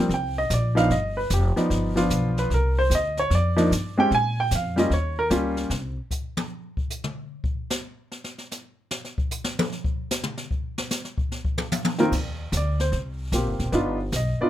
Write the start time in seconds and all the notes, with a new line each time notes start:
0.00 C4
0.09 C2, brush sweep, kick, snare
0.14 G5
0.38 D#5
0.50 A#1 D5, kick, snare, hi-hat pedal
0.75 F3 B3 D4 D#4 F5, snare
0.90 G1 D#5, brush sweep, kick, snare
1.17 B4
1.30 F1 G4, kick, snare, hi-hat pedal
1.56 F3 B3 D#4 D5, snare
1.70 G1, brush sweep, kick, snare
1.96 F3 B3 D4 F4, snare
2.10 B1, kick, snare, hi-hat pedal
2.37 B4, snare
2.50 C2 A#4, brush sweep, kick, snare
2.79 C5
2.90 D2, snare, hi-hat pedal
2.95 D#5
3.17 C#5, snare
3.30 F2, brush sweep, snare
3.35 D5
3.56 F3 A#3 D4 D#4, snare
3.71 G2, kick, snare, hi-hat pedal
3.98 G#3 C4 C#4 G4 G5
4.11 A#2 G#5, brush sweep, kick, snare
4.40 G5
4.51 F2, kick, snare, hi-hat pedal
4.55 F5
4.76 G3 A#3 C#4 F4 D#5, snare
4.90 D#2 C#5, brush sweep, kick, snare
5.19 A#4
5.30 C#2 G3 A#3 C#4 F4, kick, snare, hi-hat pedal
5.57 snare
5.70 C2, snare
6.11 kick, hi-hat pedal
6.37 high tom
6.77 kick
6.90 hi-hat pedal
7.04 mid tom
7.44 kick
7.70 snare, hi-hat pedal
8.12 snare
8.24 snare
8.38 snare
8.51 snare, hi-hat pedal
8.91 snare
9.05 snare
9.18 kick
9.31 hi-hat pedal
9.44 snare
9.59 high tom
9.72 snare
9.84 kick
10.11 snare, hi-hat pedal
10.23 mid tom
10.37 snare
10.51 kick
10.78 snare
10.91 snare, hi-hat pedal
11.05 snare
11.18 kick
11.32 snare
11.45 kick
11.58 high tom
11.72 hi-hat pedal, high tom
11.85 high tom
11.98 D#3 A#3 C4 F4 A#4, snare
12.12 D#2, brush sweep, kick, snare, crash
12.52 D2, kick, snare, hi-hat pedal
12.57 D5
12.80 C5, snare
12.92 C2, brush sweep, kick, snare
13.32 A#1 A#3 C4 F4 G4, kick, snare, hi-hat pedal
13.47 G1
13.59 D#1, snare
13.72 G1 B3 D4 D#4 F4, brush sweep, kick, snare
14.12 B1, kick, snare, hi-hat pedal
14.16 D#5
14.39 B3 D4 D#4 F4 D5, muted upright bass stroke